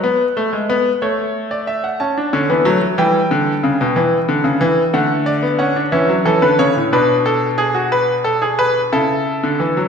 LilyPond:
<<
  \new Staff \with { instrumentName = "Grand piano" } { \time 6/8 \key d \major \tempo 4. = 61 b'4. cis''8. d''16 e''16 fis''16 | a''4. g''4.~ | g''4. fis''8 d''8 fis''8 | e''8 a'16 b'16 cis''8 b'8 a'8 gis'16 fis'16 |
b'8 a'16 gis'16 b'8 a'4. | }
  \new Staff \with { instrumentName = "Grand piano" } { \clef bass \time 6/8 \key d \major << { b8 a16 gis16 b8 a4. | cis'16 d'16 cis'16 b16 a16 fis16 g4.~ | g4. a8. b16 cis'16 d'16 | cis'4. d'4.~ |
d'4. e'4. | } \\ { r2. | r8 d16 e16 fis8 e8 d8 cis16 b,16 | e8 d16 cis16 e8 d4. | e16 fis16 e16 d16 cis16 a,16 b,4.~ |
b,4. cis8. d16 e16 fis16 | } >> }
>>